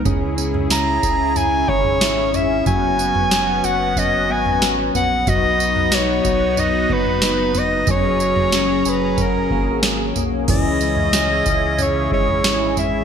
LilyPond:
<<
  \new Staff \with { instrumentName = "Soprano saxophone" } { \time 4/4 \key cis \dorian \tempo 4 = 92 r4 ais''4 gis''8 cis''4 e''8 | gis''4. fis''8 dis''8 gis''8 r8 fis''8 | dis''4 cis''4 dis''8 b'4 dis''8 | cis''4. b'8 ais'4 r4 |
dis''2 cis''8 cis''4 e''8 | }
  \new Staff \with { instrumentName = "Analog synth pad" } { \time 4/4 \key cis \dorian <cis cis' e' gis'>1 | <b fis'>1 | <b dis' fis'>1 | <fis cis' gis' ais''>1 |
<cis cis' e' gis'>1 | }
  \new Staff \with { instrumentName = "Clean electric guitar" } { \time 4/4 \key cis \dorian <cis' gis'>8 cis'8 e'8 gis'8 e'8 cis'8 e'8 cis'8 | <fis fis'>8 b8 cis'8 fis'8 cis'8 b8 cis'8 b8 | <fis fis'>8 b8 dis'8 fis'8 dis'8 b8 dis'8 b8 | <fis gis'>4 cis'8 gis'8 cis'8 ais8 cis'8 ais8 |
<e gis'>8 gis8 cis'8 gis'8 cis'8 gis8 cis'8 gis8 | }
  \new Staff \with { instrumentName = "Analog synth bass" } { \clef bass \time 4/4 \key cis \dorian cis,4. cis,4 gis,,4. | fis,,8. fis,,8. fis,,4 gis,,4 ais,,8 | b,,4. b,,4 fis,,4. | fis,,8. fis,,8. fis,,4 gis,,4 b,,8 |
cis,4. cis,4 gis,,4. | }
  \new DrumStaff \with { instrumentName = "Drums" } \drummode { \time 4/4 <bd tamb tomfh>8 tamb16 tomfh16 <sn tamb>8 <bd tamb>8 <tamb tomfh>8 bd16 tomfh16 <sn tamb>8 <tamb tomfh>8 | <bd tamb tomfh>8 tamb16 tomfh16 <sn tamb>8 tamb8 <bd tamb tomfh>8. tomfh16 <sn tamb>8 <tamb tomfh>8 | <bd tamb tomfh>8 tamb16 tomfh16 <sn tamb>8 <bd tamb>8 <tamb tomfh>8 bd16 tomfh16 <sn tamb>8 <tamb tomfh>8 | <bd tamb tomfh>8 tamb16 tomfh16 <sn tamb>8 tamb8 <bd tamb tomfh>8 bd8 <sn tamb>8 <tamb tomfh>8 |
<cymc bd tamb tomfh>8 tamb16 tomfh16 <sn tamb>8 <bd tamb>8 <tamb tomfh>8 bd16 tomfh16 <sn tamb>8 <tamb tomfh>8 | }
>>